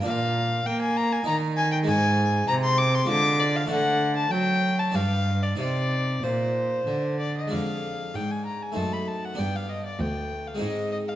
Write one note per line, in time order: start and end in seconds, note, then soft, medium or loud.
0.00 0.65 A#3 medium
0.00 1.21 D4 medium
0.00 1.22 D5 medium
0.05 0.62 A#2 medium
0.05 0.65 A#2 medium
0.05 0.68 F5 loud
0.66 1.23 A#3 medium
0.66 1.26 A#3 medium
0.66 0.81 G5 loud
0.82 0.98 G#5 loud
0.97 1.14 A#5 loud
1.12 1.26 G#5 loud
1.23 1.83 D#3 medium
1.23 1.89 D#3 medium
1.23 1.83 D#4 medium
1.23 1.85 D5 medium
1.23 1.35 A#5 loud
1.57 1.71 G#5 loud
1.72 1.78 G5 loud
1.83 3.03 G#3 medium
1.83 3.04 D#4 medium
1.83 3.05 C5 medium
1.83 2.47 G#5 loud
1.88 2.45 G#2 medium
1.88 2.47 G#2 medium
2.48 3.08 C3 medium
2.48 3.05 C3 medium
2.48 2.54 A#5 loud
2.64 2.79 C6 loud
2.78 2.96 D6 loud
2.95 3.08 C6 loud
3.05 3.66 G#3 medium
3.05 3.67 F4 medium
3.05 3.68 C5 medium
3.09 3.66 D3 medium
3.09 3.69 D3 medium
3.09 3.41 D6 loud
3.40 3.57 D5 loud
3.56 3.69 F5 loud
3.66 4.88 A3 medium
3.66 4.89 D4 medium
3.66 4.90 C5 medium
3.70 4.30 D3 medium
3.70 4.28 D3 medium
3.70 4.15 F#5 loud
4.17 4.32 A5 loud
4.31 4.95 F#3 medium
4.31 4.90 F#3 medium
4.31 4.81 G5 loud
4.79 4.96 A5 loud
4.91 5.58 G2 medium
4.91 5.55 G2 medium
4.91 5.55 D4 medium
4.91 5.56 B4 medium
4.91 5.44 F5 loud
5.43 5.58 D5 medium
5.56 6.19 C3 medium
5.56 6.22 C3 medium
5.56 7.46 D#4 soft
5.56 7.47 C5 soft
5.56 6.25 D5 loud
6.23 6.86 A#2 medium
6.23 6.84 A#2 medium
6.23 7.19 C5 medium
6.87 7.50 D3 medium
6.87 7.48 D3 medium
7.20 7.35 D5 medium
7.38 7.52 D#5 medium
7.47 8.70 G#3 soft
7.47 8.71 D4 soft
7.47 8.72 D5 soft
7.52 8.10 F2 soft
7.52 8.10 F2 medium
7.52 8.17 F5 medium
8.14 8.72 G#2 medium
8.14 8.72 G#2 soft
8.14 8.32 G5 medium
8.31 8.45 G#5 medium
8.46 8.64 A#5 medium
8.62 8.79 G#5 medium
8.72 9.34 A3 soft
8.72 9.35 D#4 soft
8.72 9.36 C5 soft
8.76 9.34 F#2 medium
8.76 9.34 F#2 soft
8.76 8.94 A5 medium
8.93 9.09 B5 medium
9.08 9.26 A5 medium
9.25 9.40 F#5 medium
9.34 10.55 B3 soft
9.34 10.55 D4 soft
9.34 10.56 D5 soft
9.38 9.95 G2 soft
9.38 9.95 G2 medium
9.38 9.57 G5 medium
9.56 9.71 F5 medium
9.69 9.84 D#5 medium
9.86 10.02 D5 medium
9.99 10.56 D2 soft
9.99 10.57 D2 medium
9.99 10.49 G5 medium
10.47 10.61 F5 medium
10.55 11.15 G#3 medium
10.55 11.15 C4 soft
10.55 11.15 D#4 soft
10.59 11.15 G#2 soft
10.59 11.15 G#2 medium
10.59 11.15 C5 soft
10.59 10.91 D#5 medium
10.92 10.98 D#5 medium
11.08 11.14 F5 medium